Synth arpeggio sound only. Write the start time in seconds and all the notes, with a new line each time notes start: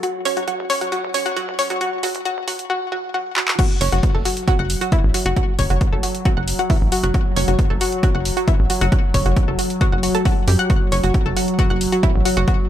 0.03 F#4
0.25 C#5
0.37 F#4
0.48 F#4
0.70 C#5
0.81 F#4
0.92 F#4
1.14 C#5
1.26 F#4
1.36 F#4
1.59 C#5
1.70 F#4
1.81 F#4
2.03 F#4
2.25 F#4
2.48 F#4
2.70 F#4
2.92 F#4
3.14 F#4
3.36 F#4
3.59 F#4
3.81 C#5
3.92 F#4
4.15 A4
4.25 F#4
4.48 F#4
4.59 F#5
4.81 F#4
4.92 E4
5.14 F#4
5.26 F#4
5.37 F#4
5.59 C#5
5.70 F#4
5.92 A4
6.03 F#4
6.25 F#4
6.37 F#5
6.59 F#4
6.70 E4
6.92 F#4
7.04 F#4
7.14 F#4
7.36 C#5
7.48 F#4
7.70 A4
7.81 F#4
8.03 F#4
8.15 F#5
8.37 F#4
8.48 E4
8.70 F#4
8.81 F#4
8.92 F#4
9.14 C#5
9.26 F#4
9.48 A4
9.59 F#4
9.81 F#4
9.92 F#5
10.03 F#4
10.15 A4
10.25 F#4
10.48 G4
10.59 F#5
10.70 F#4
10.92 C#5
11.04 F#4
11.26 A4
11.37 F#4
11.59 F#4
11.70 F#5
11.92 F#4
12.03 E4
12.25 F#4
12.37 F#4
12.48 F#4